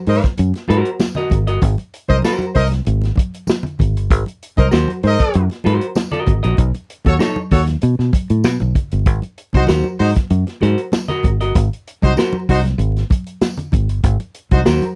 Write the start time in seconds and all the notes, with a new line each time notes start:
0.06 G#2 A#4 C5 D#5, open hi-hat
0.22 kick, snare, closed hi-hat, high conga
0.37 F#2, closed hi-hat, muted conga
0.54 snare, closed hi-hat, muted conga
0.68 G#2 F#4 A#4 C5, closed hi-hat, high conga
0.85 closed hi-hat
1.00 snare, tambourine, muted conga, high conga
1.15 F#4 A#4 D#5, closed hi-hat, low conga
1.30 G#1, kick, closed hi-hat, low conga
1.47 G1 F#4 A#4 D#5, closed hi-hat
1.62 G#1, kick, closed hi-hat, muted conga
1.78 closed hi-hat, muted conga
1.94 closed hi-hat
2.08 C2 A#4 C5 D#5, kick, closed hi-hat, high conga
2.22 F#4 A#4 C5, snare, tambourine, high conga
2.39 closed hi-hat, muted conga, high conga
2.55 C2 A#4 C5 D#5, kick, open hi-hat
2.70 snare, closed hi-hat, high conga
2.85 G#1, closed hi-hat, muted conga
3.02 snare, closed hi-hat, muted conga
3.16 kick, closed hi-hat, high conga
3.34 closed hi-hat
3.47 snare, tambourine, high conga
3.63 closed hi-hat, muted conga, low conga
3.79 G#1, kick, closed hi-hat, low conga
3.96 G1, closed hi-hat
4.10 G#1, kick, closed hi-hat
4.26 closed hi-hat, muted conga
4.43 closed hi-hat
4.57 C2 A#4 C5 D#5, kick, closed hi-hat, high conga
4.71 D#2 F#4 A#4 C5, snare, tambourine, high conga
4.88 closed hi-hat, high conga
5.03 G#2 A#4 C5 D#5, open hi-hat
5.19 kick, snare, closed hi-hat, high conga
5.34 F#2, closed hi-hat
5.50 snare, closed hi-hat, muted conga
5.64 G#2 F#4 A#4 C5, closed hi-hat, high conga
5.81 closed hi-hat
5.95 snare, tambourine, muted conga, high conga
6.11 F#4 A#4 D#5, closed hi-hat, low conga
6.27 G#1, kick, closed hi-hat, low conga
6.43 A#1 F#4 A#4 D#5, closed hi-hat
6.57 B1, kick, closed hi-hat, muted conga
6.74 closed hi-hat, muted conga
6.90 closed hi-hat
7.05 D#2 F#4 A4 C#5, kick, closed hi-hat, high conga
7.19 D#4 A4 C#5, snare, tambourine, high conga
7.36 muted conga, high conga
7.51 D#2 F#4 A4 C#5, kick, open hi-hat
7.67 snare, closed hi-hat, high conga
7.81 B2, closed hi-hat
7.99 B2, snare
8.13 kick, closed hi-hat, high conga
8.30 A2, closed hi-hat
8.44 B2, snare, tambourine, muted conga, high conga
8.60 B1, closed hi-hat, muted conga, low conga
8.75 kick, closed hi-hat, low conga
8.91 G1, closed hi-hat
9.06 G#1, kick, closed hi-hat, muted conga
9.22 closed hi-hat, muted conga
9.38 closed hi-hat
9.53 C2 D#4 F#4 C5, kick, closed hi-hat, high conga
9.67 D#2 F#4 A#4 C5, snare, tambourine, muted conga, high conga
9.84 muted conga, high conga
9.99 G#2 D#4 F#4 C5, open hi-hat
10.15 kick, snare, closed hi-hat, high conga
10.30 F#2, closed hi-hat, muted conga
10.47 snare, closed hi-hat, muted conga
10.61 G#2 F#4 A#4 C5, closed hi-hat, high conga
10.78 closed hi-hat
10.92 snare, tambourine, high conga
11.08 F#4 A#4 D#5, closed hi-hat, low conga
11.23 G#1, kick, closed hi-hat, low conga
11.40 G1 F#4 A#4 D#5, closed hi-hat
11.55 G#1, kick, closed hi-hat, muted conga
11.73 closed hi-hat
11.87 closed hi-hat
12.02 C2 D#4 F#4 C5, kick, closed hi-hat, high conga
12.17 F#4 A#4 C5, snare, tambourine, high conga
12.33 muted conga, high conga
12.49 C2 D#4 F#4 C5, kick, open hi-hat
12.64 snare, closed hi-hat, high conga
12.78 G#1, closed hi-hat, muted conga
12.96 snare, closed hi-hat
13.10 kick, closed hi-hat, high conga
13.26 closed hi-hat
13.41 snare, tambourine, muted conga, high conga
13.57 closed hi-hat, muted conga, low conga
13.72 G#1, kick, closed hi-hat, low conga
13.89 G1, closed hi-hat
14.04 G#1, kick, closed hi-hat
14.20 closed hi-hat, muted conga
14.35 closed hi-hat
14.51 C2 D#4 F#4 C5, kick, closed hi-hat, high conga
14.65 D#2 F#4 A#4 C5, snare, tambourine, high conga
14.82 closed hi-hat, muted conga, high conga